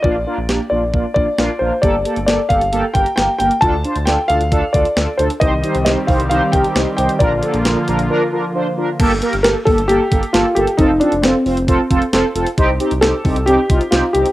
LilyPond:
<<
  \new Staff \with { instrumentName = "Grand piano" } { \time 4/4 \key g \minor \tempo 4 = 134 d''4. d''4 d''4 c''8 | d''4 d''8 f''4 g''8 g''8 g''8 | a''4 g''8 f''4 d''4 c''8 | ees''4 ees''8 f''8 f''8 g''4 g''8 |
d''4 r2. | r4 bes'8 a'8 g'4 f'8 g'8 | ees'8 d'8 c'2 r4 | r4 a'4 g'4 f'8 g'8 | }
  \new Staff \with { instrumentName = "Analog polysynth" } { \time 4/4 \key g \minor <bes d' f'>8 <bes d' f'>8 <bes d' g'>8 <bes d' f'>8 <bes d' f'>8 <bes d' f'>8 <bes d' f'>8 <bes d' f'>8 | <bes g' a'>8 <bes g' a'>8 <bes g' a'>8 <bes g' a'>8 <bes g' a'>8 <bes g' bes'>8 <bes g' bes'>8 <bes g' bes'>8 | <d' f' a'>8 <d' f' c''>8 <d' f' a'>8 <d' f' a'>8 <d' f' a'>8 <d' f' a'>8 <d' f' a'>8 <d' f' a'>8 | <ees' g' c''>8 <ees' g' c''>8 <ees' g' c''>8 <ees' g' c''>8 <ees' g' c''>8 <ees' g' bes'>8 <ees' g' c''>8 <ees' g' c''>8 |
<d' f' bes'>8 <d' f' a'>8 <d' f' bes'>8 <d' f' bes'>8 <d' f' bes'>8 <d' f' bes'>8 <d' f' c''>8 <d' f' bes'>8 | <bes g' a'>8 <bes g' bes'>8 <bes g' a'>8 <bes g' a'>8 <bes g' a'>8 <bes g' a'>8 <bes g' a'>8 <bes g' a'>8 | <c' f' a'>8 <c' f' a'>8 <c' f' a'>8 <c' f' c''>8 <c' f' a'>8 <c' f' a'>8 <c' f' a'>8 <c' f' a'>8 | <c' ees' g'>8 <c' ees' g'>8 <c' ees' g'>8 <c' ees' g'>8 <c' ees' g'>8 <c' ees' f'>8 <c' ees' g'>8 <c' ees' g'>8 | }
  \new Staff \with { instrumentName = "Analog synth pad" } { \clef bass \time 4/4 \key g \minor r1 | r1 | r1 | <ees g c' g'>1 |
<d f bes f'>1 | r1 | r1 | r1 | }
  \new Staff \with { instrumentName = "Analog synth bass" } { \clef bass \time 4/4 \key g \minor bes,,16 bes,,16 r16 bes,,16 bes,,16 r16 bes,,16 bes,,16 bes,,16 r16 bes,,16 r16 bes,,16 r16 bes,,16 r16 | g,,16 g,,16 r16 g,,16 g,,16 r16 g,,16 g,,16 g,,16 r16 g,,16 r16 g,,16 r16 g,,16 r16 | d,16 d,16 r16 d,16 d,16 r16 d,16 d,16 d,16 r16 d,16 r16 d,16 r16 d,16 r16 | c,16 c,16 r16 c,16 c,16 r16 c,16 c,16 c,16 r16 c,16 r16 c,16 r16 c,16 r16 |
bes,,16 bes,,16 r16 bes,,16 bes,,16 r16 bes,,16 bes,,16 r2 | g,,16 g,,16 r16 g,,16 g,,16 r16 g,,16 g,,16 g,,16 r16 g,,16 r16 g,,16 r16 g,,16 r16 | f,,16 f,,16 r16 f,,16 f,,16 r16 f,,16 f,,16 f,,16 r16 f,,16 r16 f,,16 r16 f,,16 r16 | c,16 c,16 r16 c,16 c,16 r16 c,16 c,16 c,16 r16 c,16 r16 c,16 r16 c,16 r16 | }
  \new DrumStaff \with { instrumentName = "Drums" } \drummode { \time 4/4 bd4 sn4 bd8 bd8 sn4 | <hh bd>8 hh16 hh16 <hh sn>8 <hh bd>16 hh16 hh8 <hh bd>16 hh16 <hh sn>8 hh16 hh16 | <hh bd>8 hh16 hh16 <hh sn>8 hh16 hh16 <hh bd>8 <hh bd>16 hh16 <hh sn>8 hh16 hh16 | <hh bd>8 hh16 hh16 <hh sn>8 <hho bd>16 hh16 hh8 <hh bd>16 hh16 <hh sn>8 hh16 hh16 |
<hh bd>8 hh16 hh16 <hh sn>8 hh16 hh16 r4 r4 | <cymc hh bd>8 hh16 hh16 <hh sn>8 <hho bd>16 hh16 hh8 <hh bd>16 hh16 <hh sn>8 hh16 hh16 | <hh bd>8 hh16 hh16 <hh sn>8 hho16 hh16 <hh bd>8 <hh bd>16 hh16 <hh sn>8 hh16 hh16 | <hh bd>8 hh16 hh16 <hh sn>8 <hho bd>16 hh16 hh8 <hh bd>16 hh16 <hh sn>8 hh16 hh16 | }
>>